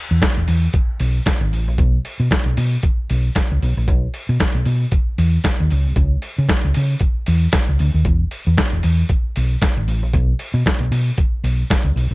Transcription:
0.11 E2
0.22 kick, snare, closed hi-hat
0.37 E1
0.48 E2, open hi-hat
0.73 kick, closed hi-hat
1.00 B1, open hi-hat
1.26 kick, snare, closed hi-hat
1.41 G#1
1.53 A1, open hi-hat
1.68 A#1
1.78 B1, kick, closed hi-hat
2.05 open hi-hat
2.20 B2
2.31 kick, snare, closed hi-hat
2.46 B1
2.57 B2, open hi-hat
2.83 kick, closed hi-hat
3.10 B1, open hi-hat
3.35 kick, snare, closed hi-hat
3.52 C#2
3.63 B1, open hi-hat
3.77 A#1
3.88 B1, kick, closed hi-hat
4.14 open hi-hat
4.29 B2
4.40 kick, snare, closed hi-hat
4.55 B1
4.66 B2, open hi-hat
4.92 kick, closed hi-hat
5.18 E2, open hi-hat
5.44 kick, snare, closed hi-hat
5.60 D#2
5.71 C#2, open hi-hat
5.87 C2
5.96 C#2, kick, closed hi-hat
6.22 open hi-hat
6.38 C#3
6.49 kick, snare, closed hi-hat
6.65 C#2
6.74 C#3, open hi-hat
7.00 kick, closed hi-hat
7.26 E2, open hi-hat
7.52 kick, snare, closed hi-hat
7.69 C#2
7.79 D2, open hi-hat
7.94 D#2
8.05 E1, kick, closed hi-hat
8.31 open hi-hat
8.47 E2
8.58 kick, snare, closed hi-hat
8.73 E1
8.83 E2, open hi-hat
9.09 kick, closed hi-hat
9.36 B1, open hi-hat
9.61 kick, snare, closed hi-hat
9.77 G#1
9.88 A1, open hi-hat
10.03 A#1
10.13 B1, kick, closed hi-hat
10.39 open hi-hat
10.54 B2
10.66 kick, snare, closed hi-hat
10.81 B1
10.91 B2, open hi-hat
11.18 kick, closed hi-hat
11.44 B1, open hi-hat
11.70 kick, snare, closed hi-hat
11.85 C#2
11.96 B1, open hi-hat
12.11 A#1

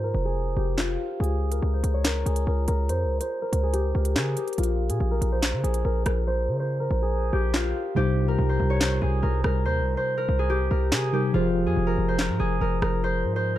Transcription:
Already playing: G#2 F4 G#4 C5
0.04 A#4
0.14 F1
0.25 G#4
0.57 F1 G4
0.77 F4, snare, clap
1.20 C#2 G#4, closed hi-hat
1.52 A#4, closed hi-hat
1.62 C#2
1.73 C5
1.84 C#2, closed hi-hat
1.94 C#5
2.05 A#4, snare, clap, closed hi-hat
2.26 C#2 G#4, closed hi-hat
2.36 closed hi-hat
2.47 C#2 A#4
2.68 C#2 A#4, closed hi-hat
2.89 F2 C5, closed hi-hat
3.05 C#2
3.21 C5, closed hi-hat
3.42 A#4
3.53 C#2, closed hi-hat
3.63 G#4
3.73 G4, closed hi-hat
3.95 C#2 A#4
4.05 closed hi-hat
4.16 C#3 G#4, snare, clap
4.37 G4, closed hi-hat
4.48 closed hi-hat
4.53 closed hi-hat
4.58 A#1 F4, closed hi-hat
4.63 closed hi-hat
4.89 A#2 G#4, closed hi-hat
5.00 A#1
5.11 A#4
5.21 A#1, closed hi-hat
5.32 C5
5.43 snare, clap, closed hi-hat
5.53 C#3
5.63 A#1 G#4, closed hi-hat
5.74 closed hi-hat
5.85 A#1 A#4
6.06 A#1 A#4, cross-stick, closed hi-hat
6.27 C5
6.48 C#3
6.59 C5
6.80 A#4
6.91 A#1
7.02 G#4
7.33 A#1 G4
7.54 F4, snare, clap
7.95 C2 C3 G3 D#4 G4 C5
8.28 A#4
8.39 C2
8.49 C5
8.60 C2
8.70 C#5
8.81 C5, snare, clap
9.01 C2 G#4
9.22 C2 A#4
9.44 C2 A#4, cross-stick
9.65 D#2 C5
9.81 C2
9.97 C5
10.18 A#4
10.29 C2
10.39 G#4
10.50 G4
10.70 C2 A#4
10.92 C3 G#4, snare, clap
11.13 C3 G3 D#4 G4 A#4
11.33 F1 F3 F4 G#4 C5
11.66 F2 G#4
11.77 F1
11.87 A#4
11.98 F1
12.08 C5
12.19 A#4, snare, clap
12.29 G#2
12.39 F1 G#4
12.61 F1 A#4
12.82 F1 A#4, cross-stick
13.04 C5
13.24 G#2
13.36 C5

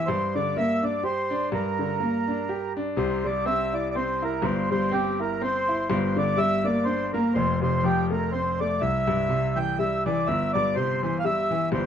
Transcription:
0.07 G2 C5
0.35 D3 D5
0.57 A#3 E5
0.83 D4 D5
1.04 G4 C5
1.30 D4
1.52 G2 A#4
1.79 D3
2.00 A#3
2.28 D4
2.49 G4
2.77 D4
2.97 C2 C3 C5
3.24 G3 D5
3.45 C4 E5
3.73 E4 D5
3.91 D5
3.95 C4 C5
4.22 E4 A#4
4.42 G1 G2 C5
4.71 G3 C5
4.91 C4 G4
5.20 E4 A#4
5.41 C4 C5
5.68 E4
5.90 G1 G2 C5
6.16 D3 D5
6.37 G3 E5
6.64 A#3 D5
6.85 D4 C5
7.13 A#3 A#4
7.34 F1 F2 C5
7.62 C3 C5
7.83 F3 G4
8.10 A3 A#4
8.32 C4 C5
8.60 A3 D5
8.81 C2 E5
9.07 G2
9.29 C3
9.56 E3 G5
9.79 G3 E5
10.06 E3 D5
10.27 G1 E5
10.53 G2 D5
10.75 C3 C5
11.03 E3 C5
11.20 F5
11.24 G3 E5
11.51 E3
11.72 G1 G2 C5

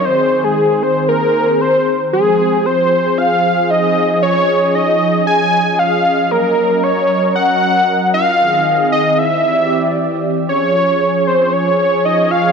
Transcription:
0.05 D#3 C4 G#4 C5
0.44 G#4
0.83 C5
1.09 A#4
1.61 C5
2.13 F3 G#4
2.66 C5
3.18 F5
3.70 D#5
4.22 C#4 C#5 D#5
4.75 D#5
5.27 G#5
5.79 F5
6.31 F#3 A#4
6.83 C#5
7.35 F#5
8.14 F5
8.39 D#3 C4 G#4 D#5
8.92 D#5
9.19 E5
9.44 E3 G4 D5
10.48 F3 C#4 G#4 C#5
11.27 C5
11.53 C#5
12.05 D#5
12.31 F5

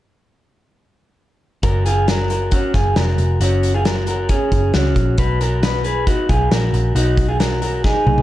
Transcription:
1.63 F#1 F#4 A#4, kick, closed hi-hat
1.86 F4 G#4, closed hi-hat
2.08 F#4 A#4, snare, closed hi-hat
2.30 F#4 A#4, closed hi-hat
2.51 C#4 F#4, kick, closed hi-hat
2.74 F#1 F4 G#4, kick, snare, closed hi-hat
2.96 F1 F#4 A#4, snare, closed hi-hat
3.18 F1, closed hi-hat
3.40 F#1 C#4 F#4, closed hi-hat
3.63 closed hi-hat
3.74 F4 G#4
3.85 F#4 A#4, snare, closed hi-hat
4.07 F#4 A#4, closed hi-hat
4.29 C#4 G#4, kick, closed hi-hat
4.52 F#1, kick, closed hi-hat
4.74 C#2 C#4 F#4, snare, closed hi-hat
4.96 A#1, kick, closed hi-hat
5.18 B1 F#4 B4, kick, closed hi-hat
5.41 F#4 A#4, closed hi-hat
5.63 F#4 B4, snare, closed hi-hat
5.84 G#4 B4, closed hi-hat
6.07 D#4 F#4, kick, closed hi-hat
6.29 B1 F4 G#4, kick, closed hi-hat
6.51 A#1 F#4 A#4, snare, closed hi-hat
6.73 A#1, closed hi-hat
6.95 B1 D#4 F#4, closed hi-hat
7.17 kick, closed hi-hat
7.28 F4 G#4
7.40 F#4 A#4, snare, closed hi-hat
7.62 F#4 A#4, closed hi-hat
7.84 D#4 G#4, kick, snare
8.07 B1, high tom
8.18 high tom

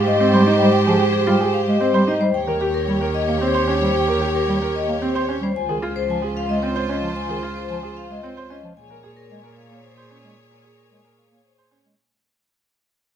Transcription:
Already playing: G#2 G4 C5 F5
0.07 G#3 D#5
0.20 C4 C5
0.33 G3 C5
0.46 D#4 D#5
0.60 G3 C5
0.73 G5
0.87 F3 G#4
0.99 G4
1.13 G#4
1.27 G3 F4 G5
1.40 G#4
1.54 F5
1.68 G#3 D#5
1.81 C4 C5
1.94 G3 C5
2.08 D#4 D#5
2.21 G3 C5
2.34 D#2 G4 C#5 G5
2.47 D#3 A#4
2.61 G4
2.74 A#4
2.88 G3 G5
3.01 A#4
3.14 D#5
3.28 A#3 C#5
3.41 C4 C5
3.54 C5
3.68 C#4 C#5
3.81 G3 C5
3.95 G5
4.08 D#3 A#4
4.21 G4
4.35 A#4
4.48 G3 G5
4.62 A#4
4.75 D#5
4.88 A#3 C#5
5.02 C4 C5
5.15 C5
5.29 C#4 C#5
5.42 G3 C5
5.55 C#2 F4 C5 G#5
5.69 D#3 G#4
5.82 F4 G#4
5.96 C5
6.09 F3 G#5
6.22 G#4
6.37 F5
6.49 G#3 D#5
6.62 C4 C#5
6.76 C5
6.89 C#4 D#5
7.03 F3
7.16 G#5
7.29 D#3 G#4
7.43 F4 G#4
7.57 C5
7.69 F3 G#5
7.83 G#4
7.97 F5
8.10 G#3 D#5
8.23 C4 C#5
8.37 C5
8.50 C#4 D#5
8.63 F3
8.77 A#2 G#4 C#5 G#5
8.90 A#4
9.03 G#4
9.17 A#4
9.29 G#3 G#5
9.44 A#4
9.57 F5
9.70 A#3 C#5
9.83 C5
9.97 C5
10.10 C#4 C#5
10.24 G#3
10.37 G#5
10.51 A#4
10.64 G#4
10.78 A#4
10.91 G#3 G#5
11.05 A#4
11.18 F5
11.31 A#3 C#5
11.45 C5
11.58 C5
11.71 C#4 C#5
11.85 G#3

